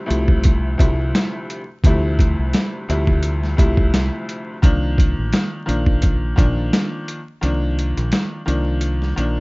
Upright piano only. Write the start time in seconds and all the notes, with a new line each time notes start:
0.06 D2 C3 F3 G3 A3 E4
0.78 D2 C3 F3 G3 A3 E4
1.85 D2 C3 F3 G3 A3 E4
2.88 D2 C3 F3 G3 A3 E4
3.57 D2 C3 F3 G3 A3 E4
4.62 D#3 F3 A#3 D4
5.66 D#3 F3 A#3 D4
6.36 D#3 F3 A#3 D4
7.41 D#3 F3 A#3 D4
8.46 D#3 F3 A#3 D4
9.16 D#3 F3 A#3 D4